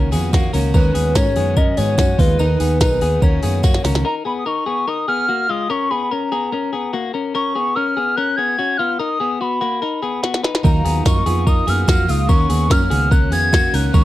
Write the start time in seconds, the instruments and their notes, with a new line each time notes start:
Already playing: fingered electric bass C#2, twelve-string acoustic guitar A#3 C#4 F#4, clean electric guitar C#4 A#4
0.11 fingered electric bass F2, twelve-string acoustic guitar D#3 A#3 C#4 F#4, clean electric guitar B3 G#4, open hi-hat, tambourine
0.31 twelve-string acoustic guitar D#3 A#3 C#4 F#4, clean electric guitar A#3 F#4, kick, snare, open hi-hat, tambourine
0.53 fingered electric bass C#2, twelve-string acoustic guitar D#3 A#3 C#4 F#4, clean electric guitar C#4 A#4, open hi-hat, tambourine
0.74 fingered electric bass D#2, twelve-string acoustic guitar D#3 G#3 C#4 F#4, clean electric guitar C#4 A#4, soft synth lead B4, kick, open hi-hat, tambourine
0.95 fingered electric bass D#2, clean electric guitar B3 G#4, open hi-hat, tambourine
1.15 fingered electric bass G#2, clean electric guitar C#4 A#4, soft synth lead C#5, kick, snare, open hi-hat, tambourine
1.25 twelve-string acoustic guitar G#3 C#4 F#4
1.36 fingered electric bass F#2, twelve-string acoustic guitar D#3 G#3 C#4 F#4, clean electric guitar B3 G#4, open hi-hat
1.57 clean electric guitar C#4 A#4, soft synth lead D#5, kick, open hi-hat
1.77 fingered electric bass G#2, twelve-string acoustic guitar D#3 G#3 C#4 F#4, clean electric guitar B3 G#4, soft synth lead C#5, open hi-hat, tambourine
1.97 fingered electric bass F#2, twelve-string acoustic guitar D#3 G#3 C#4 F#4, clean electric guitar C#4 F#4, kick, snare, open hi-hat, tambourine
2.18 fingered electric bass D#2, twelve-string acoustic guitar D#3 B3 D#4 G#4, clean electric guitar G#3 F4, soft synth lead B4, kick, open hi-hat, tambourine
2.38 fingered electric bass D#2, twelve-string acoustic guitar D#3 B3 D#4 G#4, clean electric guitar D#4 A#4, open hi-hat, tambourine
2.60 fingered electric bass D#2, clean electric guitar B3 G#4, open hi-hat, tambourine
2.81 fingered electric bass B1, clean electric guitar D#4 A#4, soft synth lead B4, kick, snare, open hi-hat, tambourine
2.90 twelve-string acoustic guitar B3 D#4 G#4
3.00 fingered electric bass D#2, twelve-string acoustic guitar D#3 B3 D#4 G#4, clean electric guitar B3 G#4, open hi-hat, tambourine
3.20 fingered electric bass D#2, twelve-string acoustic guitar D#3 A#3 C#4 F#4, clean electric guitar C#4 A#4, soft synth lead C#5, kick, open hi-hat
3.42 fingered electric bass F#2, twelve-string acoustic guitar D#3 A#3 C#4 F#4, clean electric guitar B3 G#4, open hi-hat, tambourine
3.62 twelve-string acoustic guitar D#3 A#3 C#4 F#4, clean electric guitar A#3 F#4, kick, snare, open hi-hat, tambourine
3.74 snare
3.83 fingered electric bass C#2, twelve-string acoustic guitar D#3 A#3 C#4 F#4, clean electric guitar C#4 A#4, snare, open hi-hat, tambourine
3.95 snare
4.05 clean electric guitar D#4 A#4, soft synth lead A#5
4.25 clean electric guitar B3 G#4, soft synth lead B5
4.39 soft synth lead D#6
4.46 clean electric guitar D#4 A#4, soft synth lead C#6
4.66 clean electric guitar B3 G#4
4.88 clean electric guitar D#4 A#4, soft synth lead D#6
5.08 clean electric guitar B3 G#4, soft synth lead F6
5.29 clean electric guitar A#3 F#4
5.49 clean electric guitar G#3 F4, soft synth lead D#6
5.70 clean electric guitar C#4 A#4, soft synth lead C#6
5.90 clean electric guitar B3 G#4, soft synth lead B5
6.11 clean electric guitar C#4 A#4, soft synth lead A#5
6.32 clean electric guitar B3 G#4
6.52 clean electric guitar C#4 A#4
6.73 clean electric guitar B3 G#4
6.94 clean electric guitar A#3 F#4
7.14 clean electric guitar C#4 A#4
7.35 clean electric guitar C#4 A#4, soft synth lead C#6
7.55 clean electric guitar B3 G#4
7.75 clean electric guitar C#4 A#4, soft synth lead F6
7.97 clean electric guitar B3 G#4
8.16 clean electric guitar C#4 A#4, soft synth lead F#6
8.36 clean electric guitar B3 G#4, soft synth lead G#6
8.59 clean electric guitar C#4 F#4
8.77 clean electric guitar B3 F4, soft synth lead F6
8.99 clean electric guitar D#4 A#4, soft synth lead D#6
9.20 clean electric guitar B3 G#4
9.41 clean electric guitar B3 F#4, soft synth lead B5
9.61 clean electric guitar A#3 F#4
9.82 clean electric guitar D#4 A#4
10.02 clean electric guitar B3 G#4
10.23 clean electric guitar B3 F#4, snare
10.34 snare
10.43 clean electric guitar D#4 B4, snare
10.55 snare
10.63 fingered electric bass D#2, twelve-string acoustic guitar D#3 F#3 A#3 D#4 F4, clean electric guitar D#4 A#4, soft synth lead A#5, kick, open hi-hat, tambourine
10.85 fingered electric bass D#2, clean electric guitar B3 G#4, open hi-hat, tambourine
11.05 fingered electric bass F#2, clean electric guitar D#4 A#4, soft synth lead C#6, kick, snare, open hi-hat, tambourine
11.14 twelve-string acoustic guitar A#3 D#4 F4
11.26 fingered electric bass F2, twelve-string acoustic guitar A#3 D#4 F4, clean electric guitar B3 G#4, open hi-hat, tambourine
11.47 clean electric guitar D#4 A#4, soft synth lead D#6, kick, open hi-hat, tambourine
11.66 fingered electric bass F#2, twelve-string acoustic guitar F#3 A#3 D#4 F4, clean electric guitar B3 G#4, soft synth lead F6, open hi-hat, tambourine
11.86 fingered electric bass F2, twelve-string acoustic guitar F#3 A#3 D#4 F4, clean electric guitar A#3 F#4, kick, snare, open hi-hat, tambourine
12.07 fingered electric bass C#2, twelve-string acoustic guitar F#3 A#3 D#4 F4, clean electric guitar G#3 F4, soft synth lead D#6, open hi-hat, tambourine
12.29 fingered electric bass D#2, twelve-string acoustic guitar D#3 A#3 C#4 F#4, clean electric guitar C#4 A#4, soft synth lead C#6, kick, open hi-hat, tambourine
12.50 fingered electric bass D#2, clean electric guitar B3 G#4, open hi-hat, tambourine
12.70 fingered electric bass F#2, clean electric guitar C#4 A#4, soft synth lead F6, kick, snare, open hi-hat, tambourine
12.80 twelve-string acoustic guitar A#3 C#4 F#4
12.90 fingered electric bass C#2, twelve-string acoustic guitar D#3 A#3 C#4 F#4, clean electric guitar B3 G#4, open hi-hat, tambourine
13.11 clean electric guitar C#4 A#4, soft synth lead F#6, kick, open hi-hat, tambourine
13.30 fingered electric bass F2, twelve-string acoustic guitar D#3 A#3 C#4 F#4, clean electric guitar B3 G#4, soft synth lead G#6, open hi-hat, tambourine
13.51 twelve-string acoustic guitar D#3 A#3 C#4 F#4, clean electric guitar A#3 F#4, kick, snare, open hi-hat, tambourine
13.72 fingered electric bass C#2, twelve-string acoustic guitar D#3 A#3 C#4 F#4, clean electric guitar C#4 A#4, soft synth lead F#6, open hi-hat, tambourine
13.93 fingered electric bass D#2, twelve-string acoustic guitar D#3 G#3 C#4 F#4, clean electric guitar C#4 A#4, soft synth lead C#6, kick, open hi-hat, tambourine